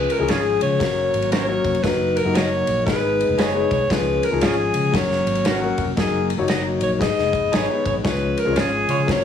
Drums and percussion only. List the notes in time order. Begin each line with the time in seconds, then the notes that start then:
0.10 ride
0.28 snare, ride
0.61 ride
0.80 kick, snare, ride
1.14 ride
1.22 ride
1.32 snare, ride
1.65 kick, ride
1.75 ride
1.84 kick, snare, ride
2.17 ride
2.35 snare, ride
2.67 ride
2.87 kick, snare, ride
3.21 ride
3.38 snare, ride
3.71 kick, ride
3.90 kick, snare, ride
4.23 ride
4.41 snare, ride
4.74 ride
4.94 kick, snare, ride
5.12 snare
5.27 ride
5.35 ride
5.45 snare, ride
5.78 kick, ride
5.97 kick, snare, ride
6.30 ride
6.48 snare, ride
6.81 ride
7.01 kick, snare, ride
7.19 snare
7.33 kick, ride
7.53 snare, ride
7.86 kick, ride
8.05 kick, snare, ride
8.37 ride
8.56 snare, ride
8.89 ride
9.08 kick, snare, ride